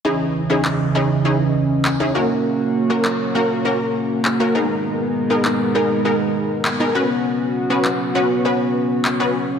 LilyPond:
<<
  \new Staff \with { instrumentName = "Synth pluck" } { \time 4/4 \key cis \dorian \tempo 4 = 100 <cis' dis' e' gis'>8 r16 <cis' dis' e' gis'>8 r16 <cis' dis' e' gis'>16 r16 <cis' dis' e' gis'>4 r16 <cis' dis' e' gis'>16 <ais cis' fis' ais'>8~ | <ais cis' fis' ais'>8 r16 <ais cis' fis' ais'>8 r16 <ais cis' fis' ais'>16 r16 <ais cis' fis' ais'>4 r16 <ais cis' fis' ais'>16 <b dis' gis' ais'>8~ | <b dis' gis' ais'>8 r16 <b dis' gis' ais'>8 r16 <b dis' gis' ais'>16 r16 <b dis' gis' ais'>4 r16 <b dis' gis' ais'>16 <b cis' fis' b'>8~ | <b cis' fis' b'>8 r16 <b cis' fis' b'>8 r16 <b cis' fis' b'>16 r16 <b cis' fis' b'>4 r16 <b cis' fis' b'>8 r16 | }
  \new Staff \with { instrumentName = "Analog synth pad" } { \time 4/4 \key cis \dorian <cis e cis' dis''>2.~ <cis e cis' dis''>8 <ais fis'>8~ | <ais fis'>2.~ <ais fis'>8 <gis b dis' ais'>8~ | <gis b dis' ais'>2.~ <gis b dis' ais'>8 <b cis' fis'>8~ | <b cis' fis'>1 | }
  \new DrumStaff \with { instrumentName = "Drums" } \drummode { \time 4/4 r4 hc4 r4 hc4 | r4 hc4 r4 hc4 | r4 hc4 r4 hc4 | r4 hc4 r4 hc4 | }
>>